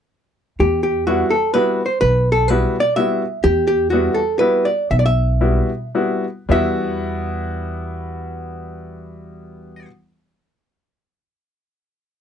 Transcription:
0.59 upright bass E2, hollow-body jazz guitar G4
0.83 hollow-body jazz guitar G4
1.07 upright piano G3 B3 E4 F#4, hollow-body jazz guitar F#4
1.30 hollow-body jazz guitar A4
1.54 upright piano G3 B3 E4 F#4, hollow-body jazz guitar B4
1.86 hollow-body jazz guitar C5
2.01 upright bass B1, hollow-body jazz guitar B4
2.32 hollow-body jazz guitar A4
2.48 upright piano G3 B3 E4 F#4, hollow-body jazz guitar B4
2.80 hollow-body jazz guitar D5
2.96 upright piano G3 B3 E4 F#4, hollow-body jazz guitar E5
3.44 upright bass E2, hollow-body jazz guitar G4
3.67 hollow-body jazz guitar G4
3.90 upright piano G3 B3 E4 F#4, hollow-body jazz guitar F#4
4.14 hollow-body jazz guitar A4
4.39 upright piano G3 B3 E4 F#4, hollow-body jazz guitar B4
4.65 hollow-body jazz guitar D5
4.91 upright bass B1, hollow-body jazz guitar E5
4.99 hollow-body jazz guitar D5
5.06 hollow-body jazz guitar E5
5.41 upright piano G3 B3 E4 F#4
5.95 upright piano G3 B3 E4 F#4
6.49 upright bass E2, upright piano G3 B3 E4 F#4, hollow-body jazz guitar E5

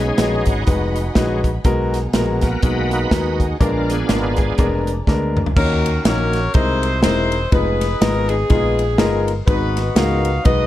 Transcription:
Already playing: fingered electric bass B1, grand piano B2, string section D#5 F#5 G#5 B5
0.00 tonewheel organ G#3 C#4
0.08 tonewheel organ D#4 G#4
0.17 fingered electric bass A#1, grand piano G#3 D#4 F#4 B4, snare, closed hi-hat
0.46 fingered electric bass G#1, tonewheel organ D#4 F#4, kick, closed hi-hat
0.66 fingered electric bass F1, grand piano G#3 D#4 F#4 B4, kick, closed hi-hat
0.96 closed hi-hat
1.15 fingered electric bass A#1, tonewheel organ G#3 C#4 D#4, grand piano G#3 D#4 F#4 B4, kick, snare, closed hi-hat
1.44 kick, closed hi-hat
1.64 fingered electric bass B1, grand piano B2 G#3 B3 F#4 A#4, string section G#4 F#5 G#5 A#5, kick, closed hi-hat
1.94 snare, closed hi-hat
2.13 fingered electric bass A#1, grand piano G#3 B3 F#4 A#4, snare, closed hi-hat
2.41 tonewheel organ A#3 B3 F#4 A#4, kick, snare, closed hi-hat
2.62 fingered electric bass B1, grand piano G#3 B3 F#4 B4, tonewheel organ D#4 F#4 B4, kick, closed hi-hat
2.91 tonewheel organ D#4 F#4 B4, closed hi-hat
3.11 fingered electric bass D#2, grand piano G#3 B3 F#4 A#4, kick, snare, closed hi-hat
3.40 kick, closed hi-hat
3.60 fingered electric bass A#1, grand piano A#2 G#3 B3 D4 A#4, tonewheel organ D4 F4 A#4, string section D5 A#5, kick, closed hi-hat
3.90 tonewheel organ B3 D4 G#4, snare, closed hi-hat
4.09 fingered electric bass G#1, grand piano G#3 B3 D4 A#4, snare, closed hi-hat
4.36 tonewheel organ G#3 B3 D4, kick, closed hi-hat
4.58 fingered electric bass F1, grand piano G#3 B3 D4 A#4, kick, closed hi-hat
4.87 closed hi-hat
5.07 fingered electric bass D2, grand piano G#3 B3 D4 A#4, kick, snare
5.37 mid tom
5.46 floor tom
5.56 fingered electric bass D#2, grand piano D#3 A#3 C#4 D#4 F#4 C#5, horn section C#4 F#4 A#4, kick, crash
5.86 ride
6.05 fingered electric bass A#1, grand piano A#3 C#4 D#4 F#4 A#4, horn section F#4 A#4 C#5, snare, ride
6.33 snare, ride
6.54 fingered electric bass C2, grand piano C3 G#3 C4 D#4 E4 A#4, horn section D#4 E4 C5, kick, ride
6.83 ride
7.03 fingered electric bass E1, grand piano G#3 C4 D#4 E4 A#4, horn section D#4 E4 C5, snare, ride
7.32 ride
7.52 fingered electric bass F1, grand piano G#3 B3 D#4 F4 B4, horn section D#4 G#4 B4, kick, ride
7.81 snare, ride
8.00 fingered electric bass G#1, grand piano G#3 B3 D#4 F4 B4, horn section A#4, snare, ride
8.29 horn section B3 D#4 G#4, ride
8.50 fingered electric bass A#1, grand piano G#3 B3 D#4 F4 G#4, kick, ride
8.79 ride
8.98 fingered electric bass G1, grand piano G#3 B3 D#4 F4 A#4, snare, ride
9.28 ride
9.46 fingered electric bass G#1, grand piano G#2 G#3 B3 D#4 F#4 B4, horn section D#4 F#4 B4, kick, ride
9.77 snare, ride
9.95 fingered electric bass C#2, grand piano G#3 B3 D#4 F#4 A#4, horn section B4 F5, snare, ride
10.25 ride
10.45 fingered electric bass B1, grand piano G#3 B3 D#4 F#4 B4, horn section F#4 B4 D#5, kick, ride

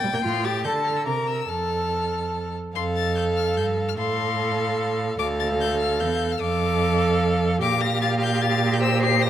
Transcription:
Already playing: violin G5 A6
0.03 cello A#2, viola G3
0.13 cello A#2, viola A#3, violin G6
0.23 cello A2, viola F4, violin C6
0.44 viola G4, violin A6
0.64 cello D3, viola A4, violin A5 G6
0.84 violin F6
0.96 violin E6
1.06 cello C3, viola A#4, violin A#5 D6
1.27 violin E6
1.48 cello F2, viola A4, violin A5 F6
2.74 cello F2, viola A4, violin F5 C6
2.96 violin A6
3.16 violin G6
3.36 violin F6
3.56 cello G2, violin G6
3.89 violin F6
3.97 cello A2, viola A4, violin F5 C6
5.19 cello D2, viola A4, violin F5 D6
5.40 violin A6
5.60 violin G6
5.80 violin F6
6.00 cello E2, violin G6
6.32 violin F6
6.40 cello F2, viola A4, violin F5 D6
7.61 cello A#2, viola G4, violin F5 D6
7.81 violin A#6
8.02 violin A6
8.22 violin G6
8.42 violin A6
8.73 violin G6
8.82 violin C5 E6
9.02 violin C7
9.22 violin A#6

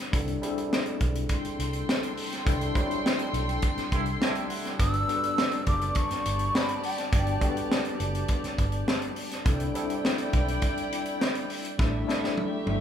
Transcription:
Already playing: tine electric piano G3 B3 D4 F#4 A#4 B4
0.12 fingered electric bass C2, tine electric piano G3 C4 D4 E4 A4, kick, closed hi-hat
0.28 closed hi-hat
0.42 tine electric piano G3 C4 D4 E4 G#4, closed hi-hat
0.50 tine electric piano A4
0.58 closed hi-hat
0.73 snare
0.86 closed hi-hat
1.00 fingered electric bass B1, kick, closed hi-hat
1.15 closed hi-hat
1.29 string section A4 G5 C6, kick, closed hi-hat
1.44 muted fingered electric bass stroke, closed hi-hat
1.59 fingered electric bass C2, closed hi-hat
1.73 closed hi-hat
1.89 snare
2.03 closed hi-hat
2.17 open hi-hat
2.32 snare, closed hi-hat
2.45 fingered electric bass C2, tine electric piano G3 C4 D4 E4 A4, kick, closed hi-hat
2.61 closed hi-hat
2.75 tine electric piano F#3 G3 C4 D4 E4, kick, closed hi-hat
2.91 closed hi-hat
3.06 snare
3.19 closed hi-hat
3.33 fingered electric bass B1, closed hi-hat
3.49 closed hi-hat
3.62 kick, closed hi-hat
3.77 muted fingered electric bass stroke, snare, closed hi-hat
3.92 fingered electric bass C2, horn section G3 A3 E4, tine electric piano C6, kick, closed hi-hat
4.06 closed hi-hat
4.21 horn section G3 A3 E4, tine electric piano A5, snare
4.35 closed hi-hat
4.50 tine electric piano F#5, open hi-hat
4.65 snare, closed hi-hat
4.78 fingered electric bass G1, tine electric piano G3 B3 D4 F#4 B4, string section G4 D5 A5, flute E6, kick, closed hi-hat
4.94 closed hi-hat
5.08 tine electric piano G3 B3 D4 F#4 A4, closed hi-hat
5.16 tine electric piano B4
5.23 closed hi-hat
5.38 snare
5.51 closed hi-hat
5.66 fingered electric bass F#1, flute D6, kick, closed hi-hat
5.81 closed hi-hat
5.95 flute C#6, kick, closed hi-hat
6.11 muted fingered electric bass stroke, snare, closed hi-hat
6.25 fingered electric bass G1, closed hi-hat
6.39 closed hi-hat
6.55 flute B5, snare
6.69 closed hi-hat
6.83 flute G5, open hi-hat
6.98 snare, closed hi-hat
7.12 fingered electric bass G1, tine electric piano G3 B3 D4 F#4 D5, kick, closed hi-hat
7.27 closed hi-hat
7.41 tine electric piano G3 B3 D4 F#4 A4, kick, closed hi-hat
7.49 tine electric piano B4
7.57 closed hi-hat
7.72 snare
7.85 closed hi-hat
8.00 fingered electric bass F#1, closed hi-hat
8.15 closed hi-hat
8.28 kick, closed hi-hat
8.44 muted fingered electric bass stroke, snare, closed hi-hat
8.58 fingered electric bass G1, kick, closed hi-hat
8.72 closed hi-hat
8.88 snare
9.02 closed hi-hat
9.16 open hi-hat
9.31 snare, closed hi-hat
9.45 fingered electric bass C2, tine electric piano G3 C4 D4 E4 A4, string section E4 D5 G5, kick, closed hi-hat
9.60 closed hi-hat
9.74 tine electric piano G3 C4 D4 E4 A4, closed hi-hat
9.90 closed hi-hat
10.05 snare
10.18 closed hi-hat
10.33 fingered electric bass B1, kick, closed hi-hat
10.48 closed hi-hat
10.62 kick, closed hi-hat
10.77 closed hi-hat
10.92 closed hi-hat
11.05 closed hi-hat
11.21 snare
11.35 closed hi-hat
11.50 open hi-hat
11.65 closed hi-hat
11.78 fingered electric bass A1, tine electric piano G3 A3 D4 E4 A4, string section A3 G4 E5, kick, snare
12.07 tine electric piano G3 A3 D4 E4 A4, snare
12.24 snare
12.38 high tom
12.66 fingered electric bass G1, high tom

